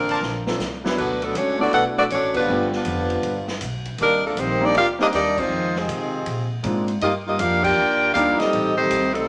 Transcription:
Already playing: upright bass A1, trombone section D3 F3 A#3, saxophone section F3 C4 D4 A#4
0.09 trumpet section A#4 C5 D5 A5, ride
0.21 upright bass A#1, snare
0.46 grand piano F3 A#3 C4 D4 A4, snare
0.59 upright bass C2, snare, hi-hat pedal
0.84 grand piano F#3 B3 D4 E4 B4, snare
0.97 upright bass D2, trombone section B2 F#3 B3, saxophone section A3 D4 F#4 B4, kick, crash
1.21 trombone section B2 F#3 A3, saxophone section F#3 B3 D4 A4, ride
1.35 upright bass C#2, saxophone section A3 D4 F#4 C#5, trombone section C#4, kick, hi-hat pedal, ride
1.59 trombone section A3 B3 D4, grand piano A3 B3 D4 E4 F#4, saxophone section B3 F#4 A4 D5
1.72 upright bass B1, trombone section A3 B3 F#4, saxophone section D4 A4 B4 F#5, kick, ride
1.97 trombone section A3 B3 D4, saxophone section B3 F#4 A4 D5
2.10 upright bass A1, saxophone section A3 D4 F#4 C#5, trombone section C#4, kick, hi-hat pedal, ride
2.34 trombone section D3 F3 B3, saxophone section G3 D4 F4 B4, kick, crash
2.48 upright bass G1, grand piano A3 B3 D4 F4 G4
2.72 trombone section D3 F3 B3, saxophone section B4, snare
2.76 saxophone section G3 D4 F4
2.85 upright bass F1, kick, hi-hat pedal, ride
3.10 ride
3.23 upright bass G1, kick, ride
3.48 snare
3.61 upright bass B1, kick, hi-hat pedal, ride
3.85 kick, ride
3.98 upright bass C2, trombone section D#3 G3 A#3, saxophone section G3 D4 D#4 A#4, kick, ride
4.24 saxophone section F3 A#3 D4 A4, trombone section A3
4.37 upright bass A#1, trombone section D#3 G3 C4, saxophone section A#3 D#4 G4 C5, kick, hi-hat pedal, ride
4.61 trombone section G3 A#3, grand piano A#3 C4 D4 D#4 G4, saxophone section A#3 D#4 G4 D5
4.65 trombone section D4
4.74 upright bass D2, saxophone section D4 G4 A#4 F5, trombone section F4, kick, ride
4.99 trombone section G3 A#3 D#4, grand piano A#3 C4 D4 D#4 A#4, saxophone section A#3 D4 G4 D#5, snare
5.13 upright bass D#2, trombone section G3 A#3 D4, saxophone section A#3 D#4 G4 D5, kick, snare, hi-hat pedal, ride
5.38 trombone section D#3 G#3 C4, saxophone section G#3 D#4 F4 C5, kick, crash
5.49 upright bass F2
5.76 trombone section C3 D#3 G#3, saxophone section F3 C4 D#4 G#4, snare
5.88 upright bass C3, kick, hi-hat pedal, ride
6.26 upright bass A#2, kick, ride
6.63 upright bass G#2, grand piano G#3 A#3 C4 D4 F4, kick, hi-hat pedal, ride
6.88 ride
7.01 upright bass G2, trombone section G3 A#3 D#4, saxophone section A#3 F4 G4 D#5, kick, ride
7.27 trombone section G3 A#3 D#4, saxophone section A#3 F4 G4 D#5
7.39 upright bass F2, trombone section A#3 D4 F4, saxophone section D4 G4 A#4 F5, kick, hi-hat pedal, ride
7.63 trombone section A#3 D4 G4, saxophone section F4 A#4 D5 G5, kick, crash
7.77 upright bass D#2
8.14 upright bass D2, grand piano G3 A#3 D4 D#4 F4, trombone section A#3 D4 F4, saxophone section D4 G4 A#4 F5, kick, hi-hat pedal, ride
8.39 trombone section G3 C4 D#4, saxophone section C4 G4 A4 D#5, muted upright bass stroke, snare, ride
8.53 upright bass A1, kick, ride
8.77 trombone section D#3 G3 C4, saxophone section A3 D#4 G4 C5
8.91 upright bass C2, kick, hi-hat pedal, ride
9.14 trombone section C3 D#3 A3, saxophone section G3 C4 D#4 A4, ride

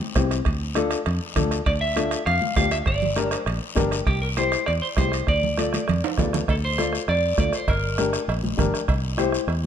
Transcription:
0.01 high conga
0.15 fingered electric bass C2, upright piano C4 E4 G4, bombo low, bombo rim, high conga, high timbale, low timbale, short guiro
0.31 bombo rim, high timbale, short guiro
0.45 fingered electric bass D2, bombo low, bombo rim, high timbale, long guiro
0.75 upright piano D4 F4 A4, bombo rim, high conga, high timbale, short guiro
0.91 bombo rim, high timbale, short guiro
1.06 fingered electric bass F2, bombo rim, high timbale, long guiro
1.36 fingered electric bass D2, upright piano D4 F4 A4, bombo low, bombo rim, high conga, low conga, high timbale, short guiro
1.51 bombo rim, high timbale, short guiro
1.66 fingered electric bass D2, clean electric guitar D5, bombo low, bombo rim, high timbale, long guiro
1.81 clean electric guitar E5
1.96 upright piano D4 F4 A4, bombo rim, high conga, high timbale, short guiro
2.11 bombo rim, high timbale, short guiro
2.26 fingered electric bass F2, clean electric guitar F5, bombo rim, high timbale, long guiro
2.42 high conga
2.56 fingered electric bass D2, upright piano D4 F4 G4, clean electric guitar F5, bombo low, bombo rim, high conga, high timbale, low timbale, short guiro
2.71 clean electric guitar E5, bombo rim, high timbale, short guiro
2.86 fingered electric bass G1, clean electric guitar D5, bombo low, bombo rim, high timbale, long guiro
3.02 low conga
3.16 upright piano D4 G4 A#4, bombo rim, high conga, high timbale, short guiro
3.30 clean electric guitar C5, bombo rim, high timbale, short guiro
3.46 fingered electric bass A#1, bombo rim, high timbale, long guiro
3.75 fingered electric bass G1, upright piano D4 G4 A#4, bombo low, bombo rim, high conga, low conga, high timbale, low timbale, short guiro
3.91 bombo rim, high timbale, short guiro
4.06 fingered electric bass C2, clean electric guitar G4, bombo low, bombo rim, high timbale, long guiro
4.22 clean electric guitar A#4
4.37 upright piano E4 G4 C5, clean electric guitar C5, bombo rim, high conga, high timbale, short guiro
4.52 bombo rim, high timbale, short guiro
4.66 fingered electric bass E2, clean electric guitar D5, bombo rim, high timbale, long guiro
4.82 clean electric guitar C5
4.97 fingered electric bass C2, upright piano E4 G4 C5, clean electric guitar C5, bombo low, bombo rim, high conga, high timbale, low timbale, short guiro
5.12 bombo rim, high timbale, short guiro
5.27 fingered electric bass D2, clean electric guitar D5, bombo low, bombo rim, high timbale, long guiro
5.43 low conga
5.57 upright piano F4 A4 D5, bombo rim, high conga, high timbale, short guiro
5.73 bombo rim, high conga, high timbale, short guiro
5.88 fingered electric bass F2, bombo rim, low conga, high timbale, long guiro
6.04 high timbale
6.18 fingered electric bass D2, upright piano F4 A4 D5, bombo low, bombo rim, low conga, low timbale, short guiro
6.33 bombo rim, low conga, low timbale, short guiro
6.48 fingered electric bass D2, clean electric guitar A4, bombo low, bombo rim, cowbell, long guiro
6.65 clean electric guitar C5
6.78 upright piano F4 A4 D5, bombo rim, cowbell, high conga, short guiro
6.93 bombo rim, short guiro
7.08 fingered electric bass F2, clean electric guitar D5, bombo rim, cowbell, long guiro
7.37 fingered electric bass D2, upright piano F4 A4 D5, clean electric guitar D5, bombo low, bombo rim, cowbell, high conga, short guiro
7.53 clean electric guitar C5, bombo rim, short guiro
7.68 fingered electric bass G1, clean electric guitar A#4, bombo low, bombo rim, cowbell, long guiro
7.98 upright piano D4 G4 A#4, bombo rim, cowbell, high conga, short guiro
8.13 bombo rim, short guiro
8.28 fingered electric bass A#1, bombo rim, cowbell, long guiro
8.44 high conga
8.57 fingered electric bass G1, upright piano D4 G4 A#4, bombo low, bombo rim, cowbell, high conga, low conga, short guiro
8.74 bombo rim, short guiro
8.88 fingered electric bass C2, bombo low, bombo rim, cowbell, long guiro
9.17 upright piano E4 G4 C5, bombo rim, cowbell, high conga, short guiro
9.32 bombo rim, short guiro
9.47 fingered electric bass E2, bombo rim, cowbell, long guiro

